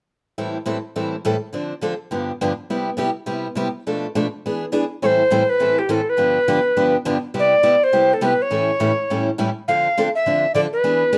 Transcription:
0.38 steel-string acoustic guitar A2 E3 G3 C4 E4 A4
0.66 steel-string acoustic guitar A2 E3 G3 C4 E4 A4
0.96 steel-string acoustic guitar A2 E3 G3 C4 E4 A4
1.25 steel-string acoustic guitar A2 E3 G3 C4 E4 A4
1.53 steel-string acoustic guitar D3 F3 C4 D4 A4
1.81 steel-string acoustic guitar D3 F3 C4 D4 A4
2.11 steel-string acoustic guitar G2 D3 F3 B3 D4 G4
2.41 steel-string acoustic guitar G2 D3 F3 B3 D4 G4
2.70 steel-string acoustic guitar C3 G3 B3 E4 G4
2.97 steel-string acoustic guitar C3 G3 B3 E4 G4
3.26 steel-string acoustic guitar C3 G3 B3 E4 G4
3.55 steel-string acoustic guitar C3 G3 B3 E4 G4
3.87 steel-string acoustic guitar B2 F3 A3 D4 A4
4.15 steel-string acoustic guitar B2 F3 A3 D4 A4
4.46 steel-string acoustic guitar E3 B3 D4 G#4
4.72 steel-string acoustic guitar E3 B3 D4 G#4
5.02 steel-string acoustic guitar A2 E3 G3 C4 E4 A4, recorder C5 C#5
5.31 steel-string acoustic guitar A2 E3 G3 C4 E4 A4
5.50 recorder B4
5.59 steel-string acoustic guitar A2 E3 G3 C4 E4 A4
5.79 recorder G4
5.89 steel-string acoustic guitar A2 E3 G3 C4 E4 A4, recorder A#4
5.94 recorder A4
6.10 recorder B4
6.17 steel-string acoustic guitar G2 D3 F3 B3 D4 G4
6.48 steel-string acoustic guitar G2 D3 F3 B3 D4 G4
6.76 steel-string acoustic guitar G2 D3 F3 B3 D4 G4
7.05 steel-string acoustic guitar G2 D3 F3 B3 D4 G4
7.34 steel-string acoustic guitar C3 G3 B3 E4 G4
7.39 recorder D5
7.63 steel-string acoustic guitar C3 G3 B3 E4 G4
7.84 recorder C5
7.93 steel-string acoustic guitar C3 G3 B3 E4 G4
8.14 recorder A4
8.21 steel-string acoustic guitar C3 G3 B3 E4 G4, recorder B4
8.42 recorder C#5
8.50 steel-string acoustic guitar A2 E3 G3 C#4 E4 A4
8.80 steel-string acoustic guitar A2 E3 G3 C#4 E4 A4
9.10 steel-string acoustic guitar A2 E3 G3 C#4 E4 A4
9.38 steel-string acoustic guitar A2 E3 G3 C#4 E4 A4
9.68 steel-string acoustic guitar D3 F3 C4 D4 A4, recorder F5
9.97 steel-string acoustic guitar D3 F3 C4 D4 A4
10.15 recorder E5
10.26 steel-string acoustic guitar D3 F3 C4 D4 A4
10.54 steel-string acoustic guitar D3 F3 C4 D4 A4, recorder D5
10.73 recorder B4
10.84 steel-string acoustic guitar E3 B3 D4 G#4
11.13 steel-string acoustic guitar E3 B3 D4 G#4

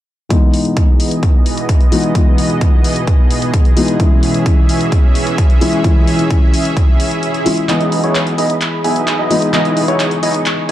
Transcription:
0.29 supersaw synth B2 E3 B3 G#4 D#5, felt piano E3 G#3 B3 D#4, kick, closed hi-hat
0.54 open hi-hat
0.65 closed hi-hat
0.77 kick, closed hi-hat
1.00 open hi-hat
1.11 closed hi-hat
1.23 kick, closed hi-hat
1.46 open hi-hat
1.57 closed hi-hat
1.69 kick, closed hi-hat
1.80 closed hi-hat
1.91 felt piano E3 G#3 B3 D#4, open hi-hat
2.04 closed hi-hat
2.14 felt piano E3 G#3 B3 D#4, kick, closed hi-hat
2.38 open hi-hat
2.50 closed hi-hat
2.61 kick, closed hi-hat
2.84 open hi-hat
2.96 closed hi-hat
3.07 kick, closed hi-hat
3.30 open hi-hat
3.42 closed hi-hat
3.54 kick, closed hi-hat
3.65 closed hi-hat
3.76 felt piano E3 G#3 B3 D#4, open hi-hat
3.88 closed hi-hat
3.99 felt piano E3 G#3 E4, supersaw synth E3 C#4 E5, kick, closed hi-hat
4.23 open hi-hat
4.34 closed hi-hat
4.46 kick, closed hi-hat
4.69 open hi-hat
4.81 closed hi-hat
4.92 kick, closed hi-hat
5.15 open hi-hat
5.27 closed hi-hat
5.38 kick, closed hi-hat
5.50 closed hi-hat
5.61 felt piano E3 G#3 C#4 E4, open hi-hat
5.73 closed hi-hat
5.83 felt piano E3 G#3 C#4 E4, kick, closed hi-hat
6.08 open hi-hat
6.19 closed hi-hat
6.31 kick, closed hi-hat
6.54 open hi-hat
6.65 closed hi-hat
6.77 kick, closed hi-hat, swell
7.00 open hi-hat
7.11 closed hi-hat
7.23 closed hi-hat
7.34 closed hi-hat
7.45 felt piano E3 G#3 C#4 E4, open hi-hat
7.57 closed hi-hat
7.68 detuned saw bass B1, felt piano E3 G#3 B3, supersaw synth B3 D#4 E4 G#4 D#5 B5 D#6, grand piano D#5, clap, closed hi-hat
7.81 closed hi-hat
7.92 open hi-hat
8.04 detuned saw bass B1, supersaw synth B3 D#4 E4 G#4 C#5, grand piano C#5, closed hi-hat
8.15 clap, closed hi-hat
8.27 closed hi-hat
8.38 detuned saw bass B1, supersaw synth B3 D#4 E4 G#4 D#5, grand piano D#5, open hi-hat
8.50 closed hi-hat
8.61 clap, closed hi-hat
8.84 detuned saw bass B1, supersaw synth B3 D#4 E4 G#4 E5, grand piano G#5, open hi-hat
8.96 closed hi-hat
9.08 clap, closed hi-hat
9.19 detuned saw bass B1, supersaw synth B3 D#4 E4 G#4 D#5, grand piano D#5
9.30 felt piano E3 G#3 B3 D#4, open hi-hat
9.42 closed hi-hat
9.52 detuned saw bass B1, felt piano E3 G#3 B3, supersaw synth B3 D#4 E4 G#4 D#5 C#6, grand piano D#5, clap, closed hi-hat
9.65 closed hi-hat
9.77 open hi-hat
9.88 detuned saw bass B1, supersaw synth B3 D#4 E4 G#4 C#5, grand piano C#5, closed hi-hat
10.00 clap, closed hi-hat
10.11 closed hi-hat
10.23 detuned saw bass B1, supersaw synth B3 D#4 E4 G#4 D#5, grand piano D#5, open hi-hat
10.34 closed hi-hat
10.46 clap, closed hi-hat

